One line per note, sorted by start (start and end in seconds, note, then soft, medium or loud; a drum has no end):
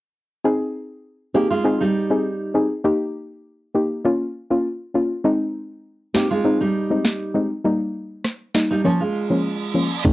0.44 1.28 C4 medium
0.44 1.28 D#4 medium
0.44 1.28 G#4 loud
1.34 1.50 A#3 medium
1.34 1.62 C4 medium
1.34 1.62 D#4 medium
1.34 1.50 G4 medium
1.34 1.63 G#4 medium
1.51 1.79 G#3 medium
1.51 1.79 F4 medium
1.64 1.83 C4 medium
1.64 1.83 D#4 medium
1.64 1.84 G#4 loud
1.81 2.67 G3 medium
1.81 2.67 D#4 medium
2.10 2.28 C4 medium
2.10 2.28 D#4 medium
2.10 2.28 G#4 medium
2.54 2.73 C4 medium
2.54 2.73 D#4 medium
2.54 2.74 G#4 medium
2.84 3.68 A#3 medium
2.84 3.68 D#4 medium
2.84 3.68 G4 loud
3.74 4.02 A#3 medium
3.74 4.02 D#4 medium
3.74 4.03 G4 medium
4.04 4.23 A#3 medium
4.04 4.23 C#4 medium
4.04 4.24 F4 loud
4.50 4.68 A#3 medium
4.50 4.68 C#4 medium
4.50 4.68 F4 medium
4.94 5.13 A#3 medium
4.94 5.13 C#4 medium
4.94 5.14 F4 medium
5.24 6.08 G#3 loud
5.24 6.08 C4 medium
5.24 6.08 D#4 loud
6.14 6.42 G#3 medium
6.14 6.30 A#3 medium
6.14 6.42 C4 medium
6.14 6.42 D#4 medium
6.14 6.30 G4 medium
6.14 snare loud
6.31 6.59 G#3 medium
6.31 6.59 F4 medium
6.44 6.63 G#3 medium
6.44 6.63 C4 medium
6.44 6.64 D#4 loud
6.61 7.47 G3 medium
6.61 7.47 D#4 medium
6.90 7.08 G#3 medium
6.90 7.08 C4 medium
6.90 7.08 D#4 medium
7.05 snare loud
7.34 7.53 G#3 medium
7.34 7.53 C4 medium
7.34 7.54 D#4 medium
7.64 8.48 G3 medium
7.64 8.48 A#3 medium
7.64 8.48 D#4 loud
8.24 cross-stick medium
8.24 snare medium
8.54 8.82 G3 medium
8.54 8.82 A#3 medium
8.54 8.83 D#4 medium
8.54 snare loud
8.71 8.84 G3 medium
8.71 8.84 D#4 medium
8.84 9.03 F3 medium
8.84 9.00 F3 medium
8.84 9.03 A#3 medium
8.84 9.00 C#4 medium
8.84 9.04 C#4 medium
8.84 reverse cymbal medium
9.01 9.87 G#3 medium
9.01 9.87 F4 medium
9.30 9.48 F3 medium
9.30 9.48 A#3 medium
9.30 9.48 C#4 medium
9.74 9.93 F3 medium
9.74 9.93 A#3 medium
9.74 9.94 C#4 medium
10.04 10.13 G#1 loud
10.04 10.13 C3 medium
10.04 10.13 D#3 medium
10.04 10.13 G#3 medium
10.04 10.13 C4 medium
10.04 10.13 D#4 medium
10.04 10.13 D#4 loud
10.04 kick loud
10.04 closed hi-hat medium
10.04 crash loud
10.04 shaker medium